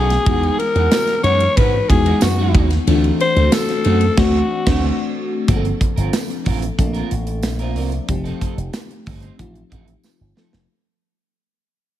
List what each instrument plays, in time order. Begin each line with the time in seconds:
Already playing: slap bass B1, fm electric piano D#3 A3 B3 C#4 F#4, alto saxophone G#4
0.10 muted clean electric guitar stroke, snare, ride
0.26 slap bass E2, fm electric piano E3 G#3 B3 D#4 F#4, clean electric guitar G#3 D#4 F#4, kick, ride
0.43 ride
0.58 alto saxophone A#4, muted clean electric guitar stroke, ride
0.75 slap bass E2, clean electric guitar G#3 D#4 F#4, ride
0.91 snare, ride, tambourine
1.07 muted clean electric guitar stroke, snare, ride
1.23 slap bass F#2, clean electric guitar G#3 D#4 F#4, alto saxophone C#5, ride
1.40 muted clean electric guitar stroke, ride
1.57 slap bass G#2, clean electric guitar G#3 D#4 F#4, alto saxophone B4, kick, ride
1.73 muted clean electric guitar stroke
1.89 slap bass E2, fm electric piano E3 G#3 B3 D#4 F#4, alto saxophone G#4, muted clean electric guitar stroke, kick, ride
2.06 clean electric guitar G#3 D#4 F#4, ride
2.21 slap bass F#2, alto saxophone F#4, muted clean electric guitar stroke, snare, ride, tambourine
2.39 clean electric guitar G#3 D#4 F#4
2.54 slap bass D#2, clean electric guitar G#3 D#4 F#4, kick, ride
2.70 muted clean electric guitar stroke, snare, ride
2.87 slap bass D2, fm electric piano E3 A3 C4 D4 F4, clean electric guitar A3 C4 A4, ride
2.95 fm electric piano F#4
3.04 ride
3.20 alto saxophone C5, muted clean electric guitar stroke, ride
3.36 slap bass D2, clean electric guitar A3 C4 A4, ride
3.52 alto saxophone A4, snare, ride, tambourine
3.69 muted clean electric guitar stroke, snare, ride
3.84 slap bass F#2, clean electric guitar A3 C4 F#4, ride
4.01 muted clean electric guitar stroke, ride
4.17 slap bass D2, fm electric piano A3 C4 D4 F#4, clean electric guitar A3 C4 F#4, alto saxophone F#4, kick, snare, crash
4.66 slap bass D2, fm electric piano A3 C4 D4 F#4, clean electric guitar A3 C4 F#4, kick, snare, crash
5.48 slap bass G1, fm electric piano F3 A#3 C4 D4 G#4, clean electric guitar C4 F4 A#4, kick, closed hi-hat
5.55 fm electric piano A4
5.64 muted clean electric guitar stroke, closed hi-hat
5.80 muted clean electric guitar stroke, kick, closed hi-hat
5.96 slap bass G1, clean electric guitar C4 F4 A#4, closed hi-hat
6.13 muted clean electric guitar stroke, snare, closed hi-hat, tambourine
6.30 muted clean electric guitar stroke, closed hi-hat
6.45 slap bass A1, clean electric guitar C4 F4 A#4, kick, open hi-hat
6.61 muted clean electric guitar stroke, closed hi-hat
6.78 slap bass A#1, fm electric piano F3 A3 C4 D4 A4, muted clean electric guitar stroke, kick, closed hi-hat
6.85 fm electric piano A#3
6.93 clean electric guitar C4 F4 A#4, closed hi-hat
7.10 slap bass A1, muted clean electric guitar stroke, closed hi-hat
7.27 muted clean electric guitar stroke, closed hi-hat
7.43 slap bass A#1, muted clean electric guitar stroke, snare, closed hi-hat, tambourine
7.59 clean electric guitar C4 F4 A#4, fm electric piano C5 E5, closed hi-hat
7.76 slap bass C2, clean electric guitar C4 F4 A#4, fm electric piano A#4 D5, open hi-hat
7.92 fm electric piano A4 C5, muted clean electric guitar stroke, closed hi-hat
8.08 slap bass F1, fm electric piano F3 G3 C4 D#4 G4, muted clean electric guitar stroke, kick, closed hi-hat
8.15 fm electric piano A3
8.24 clean electric guitar C4 D#4 A4, closed hi-hat
8.40 clean electric guitar C4 D#4 A4, kick, closed hi-hat
8.57 slap bass F1, muted clean electric guitar stroke, closed hi-hat
8.73 muted clean electric guitar stroke, snare, closed hi-hat, tambourine
8.89 muted clean electric guitar stroke, closed hi-hat
9.06 slap bass G1, clean electric guitar C4 D#4 A4, kick, open hi-hat
9.21 clean electric guitar C4 D#4 C5, closed hi-hat
9.38 slap bass A1, fm electric piano F3 A3 C4 D#4 F4, muted clean electric guitar stroke, kick, closed hi-hat
9.54 muted clean electric guitar stroke, closed hi-hat
9.70 slap bass A1, clean electric guitar C4 D#4 A4, kick, closed hi-hat
9.87 muted clean electric guitar stroke, closed hi-hat
10.04 muted clean electric guitar stroke, snare, tambourine
10.20 slap bass G1, muted clean electric guitar stroke
10.36 fm electric piano F3 A3 C4 D#4 A4, clean electric guitar C4 D#4 A4, snare
10.53 slap bass F1, muted clean electric guitar stroke, snare